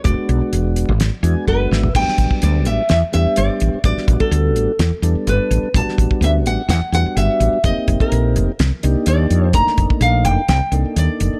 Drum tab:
CC |----------------|x---------------|----------------|----------------|
HH |x-x-x-x-x-x-----|--x-x-x-x-x-x-x-|x-x-x-x-x-x-x-x-|x-x-x-x-x-x-x-x-|
SD |--------o-----o-|-o------o-------|-o------o-------|-o------o-------|
FT |---------------o|----------------|----------------|----------------|
BD |o-----------o---|o-oo------------|o-oo------------|o-oo------------|

CC |----------------|----------------|
HH |x-x-x-x-x-x-x-x-|x-x-x-x-x-x-x-x-|
SD |--------o-------|-o------o-------|
FT |----------------|----------------|
BD |o-oo------------|o-oo------------|